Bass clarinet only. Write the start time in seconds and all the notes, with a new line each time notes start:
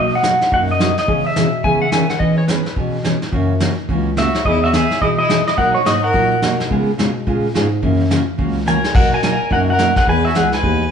Already playing: B2
0.52 F#2
1.08 C#3
1.36 B2
1.64 C#3
1.92 D#3
2.21 E3
2.77 B2
3.33 F#2
3.89 C#2
4.45 E2
5.02 B2
5.58 B2
5.86 G#2
6.14 A#2
6.42 B2
6.71 C#3
6.99 B2
7.27 A#2
7.55 G#2
7.83 F#2
8.39 C#2
8.95 B2
9.51 F#2
10.08 E2
10.36 C#2
10.63 D#2